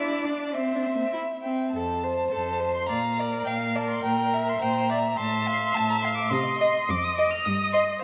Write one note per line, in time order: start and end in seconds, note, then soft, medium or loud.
0.00 0.56 D4 soft
0.00 0.26 E4 medium
0.00 0.56 D5 soft
0.00 0.22 E5 medium
0.22 0.55 D4 soft
0.22 0.30 D5 soft
0.51 0.77 C4 soft
0.51 1.08 C4 soft
0.51 1.11 C5 soft
0.51 1.53 E5 soft
0.75 0.87 D4 soft
0.85 0.96 C4 soft
0.95 1.06 A#3 soft
1.05 1.13 C4 soft
1.12 1.21 E4 soft
1.12 1.20 E5 soft
1.41 1.72 C4 soft
1.41 1.71 G5 soft
1.71 2.24 F2 soft
1.71 2.05 A4 soft
1.71 2.29 A5 medium
2.03 2.33 C5 soft
2.30 2.82 F2 soft
2.30 2.62 A4 soft
2.30 2.85 C5 soft
2.30 2.73 A5 medium
2.60 2.89 C5 soft
2.74 2.87 C6 medium
2.86 3.39 A#2 soft
2.86 2.97 D5 soft
2.86 3.21 F5 soft
2.86 3.44 A#5 medium
3.17 4.58 A#4 soft
3.17 3.48 D5 soft
3.44 3.96 A#2 soft
3.44 3.77 F5 soft
3.44 3.52 G5 medium
3.75 4.04 D5 soft
3.75 3.89 A5 soft
3.90 4.03 C6 soft
4.03 4.54 A#2 soft
4.03 4.35 G5 soft
4.03 4.50 A#5 medium
4.34 4.63 E5 soft
4.48 4.61 C6 medium
4.61 5.12 A#2 soft
4.61 4.89 C5 medium
4.61 4.91 G5 soft
4.61 5.18 A#5 medium
4.90 4.99 D5 soft
4.90 5.18 E5 soft
5.17 5.69 A2 medium
5.17 6.34 E5 medium
5.17 5.49 A5 soft
5.17 5.75 C6 medium
5.47 5.78 F5 soft
5.74 6.25 A2 medium
5.74 5.89 A5 medium
5.74 6.06 A5 soft
5.90 5.95 A#5 medium
6.01 6.33 F5 soft
6.01 6.07 C6 medium
6.15 6.31 D6 medium
6.30 6.77 C3 medium
6.30 6.61 D#5 medium
6.30 6.91 C6 medium
6.61 6.74 D#5 soft
6.61 8.00 D#5 medium
6.89 7.34 F2 medium
6.89 7.05 D6 medium
7.04 7.17 D#6 medium
7.18 7.31 D#5 medium
7.18 7.32 D6 medium
7.30 7.46 F6 medium
7.45 7.91 G2 medium
7.45 7.72 D#6 medium
7.73 7.87 D#5 medium
7.73 7.81 C6 medium